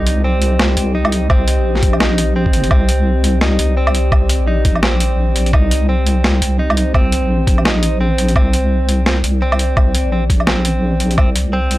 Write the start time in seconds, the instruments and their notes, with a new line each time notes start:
Already playing: wobble bass C2, ambient pad C4 G4 D#5, clean electric guitar D#4
0.07 closed hi-hat
0.24 clean electric guitar C4
0.42 closed hi-hat
0.59 snare
0.77 wobble bass C2, closed hi-hat
0.95 clean electric guitar D#4
1.05 low woodblock
1.12 closed hi-hat
1.30 wobble bass C2, clean electric guitar C4, kick, low woodblock
1.48 closed hi-hat
1.58 wobble bass A#1
1.75 snare
1.83 kick, closed hi-hat
1.93 low woodblock
2.00 clean electric guitar D#4, snare
2.18 closed hi-hat
2.36 clean electric guitar C4
2.46 kick
2.53 wobble bass G1, closed hi-hat
2.64 closed hi-hat
2.71 wobble bass C2, clean electric guitar C4, ambient pad D5, kick, low woodblock
2.89 closed hi-hat
3.24 closed hi-hat
3.41 clean electric guitar D#4, snare
3.59 wobble bass C2, closed hi-hat
3.77 clean electric guitar C4
3.87 low woodblock
3.95 closed hi-hat
4.12 wobble bass C2, kick, low woodblock
4.29 closed hi-hat
4.40 wobble bass A#1
4.47 clean electric guitar D#4
4.65 kick, closed hi-hat
4.75 low woodblock
4.83 clean electric guitar C4, snare
5.00 closed hi-hat
5.36 closed hi-hat
5.46 closed hi-hat
5.53 wobble bass C2, clean electric guitar D#4, ambient pad C5, kick, low woodblock
5.71 closed hi-hat
5.89 clean electric guitar C4
6.07 closed hi-hat
6.24 snare
6.42 wobble bass C2, closed hi-hat
6.59 clean electric guitar D#4
6.70 low woodblock
6.77 closed hi-hat
6.94 wobble bass C2, clean electric guitar C4, kick, low woodblock
7.12 closed hi-hat
7.22 wobble bass A#1
7.47 kick, closed hi-hat
7.58 low woodblock
7.65 clean electric guitar D#4, snare
7.83 closed hi-hat
8.01 clean electric guitar C4
8.18 closed hi-hat
8.28 closed hi-hat
8.36 wobble bass C2, clean electric guitar C4, ambient pad D5, kick, low woodblock
8.53 closed hi-hat
8.89 closed hi-hat
9.06 clean electric guitar C4, snare
9.24 wobble bass C2, closed hi-hat
9.42 clean electric guitar C4
9.52 low woodblock
9.59 closed hi-hat
9.77 wobble bass C2, kick, low woodblock
9.95 closed hi-hat
10.05 wobble bass A#1
10.12 clean electric guitar C4
10.30 kick, closed hi-hat
10.40 low woodblock
10.47 clean electric guitar C4, snare
10.65 closed hi-hat
11.00 closed hi-hat
11.11 closed hi-hat
11.17 wobble bass C2, clean electric guitar C4, ambient pad F5, kick, low woodblock
11.36 closed hi-hat
11.53 clean electric guitar C4
11.71 closed hi-hat